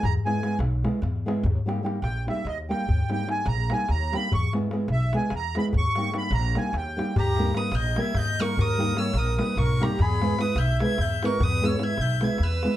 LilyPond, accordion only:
\new Staff \with { instrumentName = "Accordion" } { \time 7/8 \tempo 4 = 148 bes''8 gis''4 r2 | r4. g''8 fes''8 ees''8 g''8~ | g''8 g''8 aes''8 bes''8 aes''8 bes''8 ces'''8 | des'''8 r4 e''8 gis''8 bes''8 b''8 |
des'''4 ces'''8 bes''8 aes''8 g''4 | g'4 ces''8 ees''8 fes''8 ees''8 bes'8 | bes'4 des''8 bes'8 ces''8 bes'8 g'8 | gis'4 b'8 e''8 e''8 e''8 bes'8 |
b'8 des''8 e''8 e''8 e''8 b'4 | }